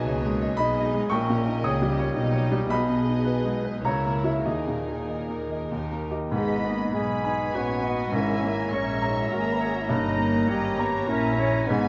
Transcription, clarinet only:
6.33 6.59 D#4 medium
6.57 6.68 E4 soft
6.66 6.78 D#4 soft
6.76 6.87 C#4 soft
6.86 6.95 D#4 medium
6.94 7.56 G#4 medium
7.55 8.13 F#4 medium
8.15 8.75 E4 medium
8.73 9.11 C#4 medium
9.09 9.23 D#4 soft
9.21 9.34 E4 medium
9.32 9.42 F#4 medium
9.40 9.48 G#4 soft
9.46 9.55 A#4 medium
9.53 9.60 B4 medium
9.59 9.67 A#4 medium
9.66 9.76 G#4 medium
9.75 9.83 F#4 soft
9.82 9.90 E4 soft
9.91 10.51 D#4 medium
10.50 11.09 G4 medium
11.08 11.68 E4 medium
11.67 11.88 D#4 medium

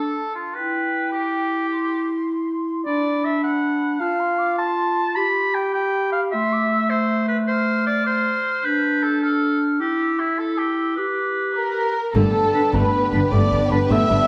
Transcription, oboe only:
0.00 0.34 A4 medium
0.35 0.56 F4 medium
0.55 1.11 B4 medium
1.12 2.07 G4 medium
2.86 3.26 D5 medium
3.24 3.43 E5 medium
3.43 4.01 F#5 medium
4.00 4.57 F5 medium
4.58 5.17 A5 medium
5.15 5.56 B5 loud
5.54 5.73 G5 medium
5.74 6.11 G5 medium
6.12 6.21 F5 medium
6.31 6.91 E5 medium
6.90 7.27 C5 medium
7.28 7.37 B4 medium
7.47 7.85 C5 medium
7.86 8.05 D5 medium
8.06 8.66 C5 medium
8.64 9.05 B4 medium
9.03 9.22 A4 medium
9.23 9.60 A4 medium
9.80 10.21 G4 medium
10.19 10.40 E4 medium
10.39 10.59 A4 medium
10.58 10.95 G4 medium
10.96 11.93 B4 medium
12.54 12.61 B5 soft
13.12 13.19 B5 medium
13.71 13.78 B5 medium

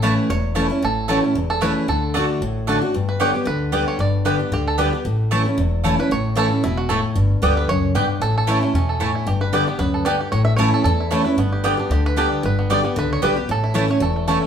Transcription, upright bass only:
0.00 0.13 A1 medium
0.30 0.66 E1 medium
0.82 1.19 A1 medium
1.35 1.72 E1 medium
1.88 2.24 D2 medium
2.41 2.77 A1 medium
2.94 3.30 G1 medium
3.47 3.83 D2 medium
3.99 4.35 G1 medium
4.52 4.88 D2 loud
5.05 5.41 A1 medium
5.58 5.94 E1 loud
6.10 6.46 A1 medium
6.63 6.99 E1 loud
7.16 7.34 G1 medium
7.42 7.65 D2 medium
7.68 7.91 C#2 medium
7.95 8.17 B1 medium
8.20 8.57 A1 medium
8.74 9.10 E2 loud
9.26 9.63 G1 medium
9.79 10.15 D2 medium
10.32 10.68 A1 medium
10.84 11.21 E2 loud
11.37 11.74 G1 medium
11.90 12.26 D2 loud
12.44 12.80 G1 medium
12.97 13.19 C#2 medium
13.22 13.45 B1 medium
13.48 13.85 A1 medium
14.01 14.37 E1 loud

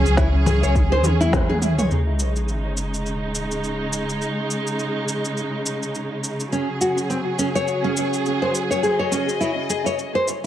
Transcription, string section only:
0.00 1.86 F#3 medium
0.00 1.86 C#4 medium
0.00 1.86 G#4 loud
1.90 10.46 C#3 medium
1.90 6.48 G#3 medium
1.90 6.48 D#4 medium
6.52 10.46 F#3 medium
6.52 10.46 G#4 medium
8.83 10.46 D#5 medium

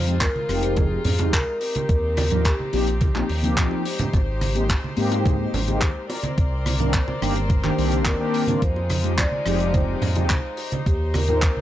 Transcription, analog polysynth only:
0.06 0.15 F3 medium
0.06 0.15 G#3 medium
0.06 0.15 C4 medium
0.06 0.15 D#4 medium
0.06 0.16 G4 medium
0.48 0.87 F3 medium
0.48 0.88 G#3 medium
0.48 0.88 C4 medium
0.48 0.88 D#4 medium
0.48 0.88 G4 loud
0.90 0.99 F3 medium
0.90 0.99 G#3 medium
0.90 1.00 C4 medium
0.90 1.00 D#4 medium
0.90 1.00 G4 medium
1.19 1.32 F3 medium
1.19 1.32 G#3 medium
1.19 1.33 C4 medium
1.19 1.33 D#4 medium
1.19 1.33 G4 medium
2.31 2.44 F3 medium
2.31 2.45 A#3 medium
2.31 2.45 C4 medium
2.31 2.45 D#4 medium
2.31 2.45 A#4 loud
2.72 2.87 F3 medium
2.72 2.87 A#3 medium
2.72 2.87 C4 medium
2.72 2.87 D#4 medium
2.72 2.87 G4 loud
3.15 3.23 F3 loud
3.15 3.24 A#3 medium
3.15 3.24 C4 medium
3.15 3.24 D#4 medium
3.15 3.24 G4 loud
3.42 3.83 F3 medium
3.42 3.83 A#3 medium
3.42 3.84 C4 medium
3.42 3.84 D#4 medium
3.42 3.84 G4 medium
4.55 4.64 G#3 medium
4.55 4.64 A#3 medium
4.55 4.64 C4 medium
4.55 4.64 D#4 medium
4.55 4.64 G4 loud
4.97 5.36 G#3 medium
4.97 5.36 A#3 medium
4.97 5.36 C4 medium
4.97 5.36 D#4 medium
4.97 5.36 G4 loud
5.39 5.48 G#3 medium
5.39 5.48 A#3 medium
5.39 5.48 C4 medium
5.39 5.48 D#4 medium
5.39 5.48 G4 medium
5.67 5.81 G#3 medium
5.67 5.81 A#3 medium
5.67 5.81 C4 medium
5.67 5.81 D#4 medium
5.67 5.81 G4 medium
6.79 6.93 D#3 medium
6.79 6.93 A#3 medium
6.79 6.93 C4 medium
6.79 6.93 D4 medium
6.79 6.93 A#4 medium
7.21 7.35 D#3 medium
7.21 7.35 A#3 medium
7.21 7.36 C4 medium
7.21 7.36 D4 medium
7.21 7.36 G4 loud
7.63 7.72 D#3 medium
7.63 7.72 A#3 medium
7.63 7.72 C4 medium
7.63 7.73 D4 medium
7.63 7.73 G4 loud
7.78 8.17 D#3 medium
7.78 8.17 A#3 medium
7.78 8.17 C4 medium
7.78 8.17 D4 medium
7.78 8.17 G4 medium
8.19 8.44 D#3 loud
8.19 8.45 A#3 medium
8.19 8.45 C4 medium
8.19 8.45 D4 medium
8.19 8.45 G4 loud
8.48 8.60 D#3 medium
8.48 8.60 A#3 medium
8.48 8.60 C4 medium
8.48 8.61 D4 medium
8.48 8.61 F4 medium
9.04 9.12 F3 medium
9.04 9.13 G#3 medium
9.04 9.13 C4 medium
9.04 9.13 D#4 medium
9.04 9.13 G4 loud
9.46 9.85 F3 loud
9.46 9.85 G#3 medium
9.46 9.85 C4 medium
9.46 9.85 D#4 medium
9.46 9.85 G4 loud
9.88 9.97 F3 medium
9.88 9.97 G#3 medium
9.88 9.97 C4 medium
9.88 9.97 D#4 medium
9.88 9.97 G4 medium
10.16 10.30 F3 medium
10.16 10.30 G#3 medium
10.16 10.30 C4 medium
10.16 10.30 D#4 medium
10.16 10.30 G4 medium
11.28 11.42 F3 medium
11.28 11.42 A#3 medium
11.28 11.42 C4 medium
11.28 11.42 D#4 medium
11.28 11.42 A#4 medium

